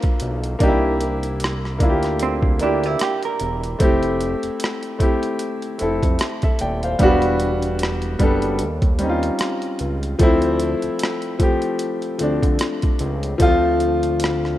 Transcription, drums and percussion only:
0.02 kick, closed hi-hat
0.20 closed hi-hat
0.44 closed hi-hat
0.60 kick, closed hi-hat
1.01 closed hi-hat
1.23 closed hi-hat
1.40 closed hi-hat
1.44 cross-stick
1.65 cross-stick
1.80 kick, closed hi-hat
2.03 cross-stick, closed hi-hat
2.19 closed hi-hat
2.43 kick
2.59 closed hi-hat
2.84 closed hi-hat
2.99 cross-stick, closed hi-hat
3.23 closed hi-hat
3.40 closed hi-hat
3.64 closed hi-hat
3.80 kick, closed hi-hat
4.03 closed hi-hat
4.21 closed hi-hat
4.43 closed hi-hat
4.60 closed hi-hat
4.64 cross-stick
4.83 closed hi-hat
5.00 kick, closed hi-hat
5.23 closed hi-hat
5.39 closed hi-hat
5.62 closed hi-hat
5.79 closed hi-hat
6.03 kick, closed hi-hat
6.19 cross-stick, closed hi-hat
6.42 kick, closed hi-hat
6.59 closed hi-hat
6.83 closed hi-hat
6.99 kick, closed hi-hat
7.22 closed hi-hat
7.40 closed hi-hat
7.62 closed hi-hat
7.79 closed hi-hat
7.83 cross-stick
8.02 closed hi-hat
8.19 kick, closed hi-hat
8.42 closed hi-hat
8.59 closed hi-hat
8.82 kick, closed hi-hat
8.99 closed hi-hat
9.23 closed hi-hat
9.39 cross-stick, closed hi-hat
9.62 closed hi-hat
9.79 closed hi-hat
10.03 closed hi-hat
10.19 kick, closed hi-hat
10.42 closed hi-hat
10.60 closed hi-hat
10.82 closed hi-hat
10.99 closed hi-hat
11.03 cross-stick
11.22 closed hi-hat
11.40 kick, closed hi-hat
11.62 closed hi-hat
11.79 closed hi-hat
12.02 closed hi-hat
12.19 closed hi-hat
12.43 kick, closed hi-hat
12.59 cross-stick, closed hi-hat
12.82 kick, closed hi-hat
12.99 closed hi-hat
13.23 closed hi-hat
13.40 kick, closed hi-hat
13.80 closed hi-hat
14.03 closed hi-hat
14.20 closed hi-hat
14.24 cross-stick
14.45 cross-stick

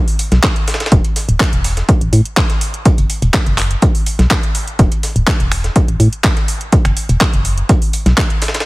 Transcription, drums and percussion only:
0.08 open hi-hat
0.19 closed hi-hat, open hi-hat
0.32 snare, closed hi-hat
0.43 kick, snare, clap, closed hi-hat
0.56 closed hi-hat
0.68 snare, closed hi-hat, open hi-hat
0.74 snare, closed hi-hat
0.80 snare, closed hi-hat
0.86 snare, closed hi-hat
0.92 kick, closed hi-hat
1.04 closed hi-hat
1.16 snare, closed hi-hat, open hi-hat
1.29 closed hi-hat
1.40 kick, snare, clap, closed hi-hat
1.53 closed hi-hat
1.64 open hi-hat
1.77 snare, closed hi-hat
1.89 kick, closed hi-hat
2.01 closed hi-hat
2.13 closed hi-hat, open hi-hat
2.25 closed hi-hat
2.37 kick, snare, clap, closed hi-hat
2.50 snare, closed hi-hat
2.61 closed hi-hat, open hi-hat
2.74 closed hi-hat
2.85 kick, closed hi-hat
2.98 closed hi-hat
3.10 closed hi-hat, open hi-hat
3.22 closed hi-hat
3.34 kick, snare, clap, closed hi-hat
3.46 closed hi-hat
3.58 clap, closed hi-hat, open hi-hat
3.71 closed hi-hat
3.82 kick, closed hi-hat
3.95 open hi-hat
4.06 closed hi-hat, open hi-hat
4.19 snare, closed hi-hat
4.31 kick, snare, clap, closed hi-hat
4.43 closed hi-hat
4.55 closed hi-hat, open hi-hat
4.68 closed hi-hat
4.79 kick, closed hi-hat
4.92 closed hi-hat
5.03 snare, closed hi-hat, open hi-hat
5.16 closed hi-hat
5.27 kick, snare, clap, closed hi-hat
5.40 closed hi-hat
5.52 finger snap, open hi-hat
5.64 snare, closed hi-hat
5.76 kick, closed hi-hat
5.88 closed hi-hat
6.00 closed hi-hat, open hi-hat
6.13 closed hi-hat
6.24 kick, snare, clap, closed hi-hat
6.37 snare, closed hi-hat
6.48 closed hi-hat, open hi-hat
6.61 closed hi-hat
6.72 kick, closed hi-hat
6.85 finger snap, closed hi-hat
6.97 closed hi-hat, open hi-hat
7.09 closed hi-hat
7.21 kick, snare, clap, closed hi-hat
7.33 closed hi-hat
7.45 closed hi-hat, open hi-hat
7.58 closed hi-hat
7.69 kick, closed hi-hat
7.82 open hi-hat
7.93 closed hi-hat, open hi-hat
8.06 snare, closed hi-hat
8.18 kick, snare, clap, closed hi-hat
8.30 closed hi-hat
8.42 snare, closed hi-hat, open hi-hat
8.48 snare, closed hi-hat
8.54 snare, closed hi-hat
8.60 snare, closed hi-hat

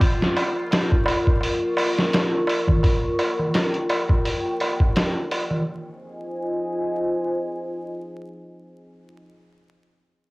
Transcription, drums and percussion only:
0.01 kick, open hi-hat, darbuka tek
0.21 snare, darbuka tek
0.37 open hi-hat, darbuka tek
0.56 darbuka tek
0.71 snare, open hi-hat, darbuka tek
0.92 kick, darbuka tek
1.06 open hi-hat, darbuka tek
1.26 kick, darbuka tek
1.41 open hi-hat, darbuka tek
1.61 darbuka tek
1.77 open hi-hat, darbuka tek
1.98 snare, darbuka tek
2.13 snare, open hi-hat, darbuka tek
2.33 darbuka tek
2.47 open hi-hat, darbuka tek
2.67 kick, darbuka tek, darbuka dum
2.83 kick, open hi-hat, darbuka tek
3.03 darbuka tek
3.19 open hi-hat, darbuka tek
3.39 darbuka tek, darbuka dum
3.54 snare, open hi-hat, darbuka tek
3.74 closed hi-hat, darbuka tek
3.89 open hi-hat, darbuka tek
4.09 kick, darbuka tek
4.25 open hi-hat, darbuka tek
4.46 darbuka tek
4.60 open hi-hat, darbuka tek
4.80 kick, darbuka tek
4.96 snare, open hi-hat, darbuka tek
5.16 darbuka tek
5.31 open hi-hat, darbuka tek
5.50 darbuka tek, darbuka dum

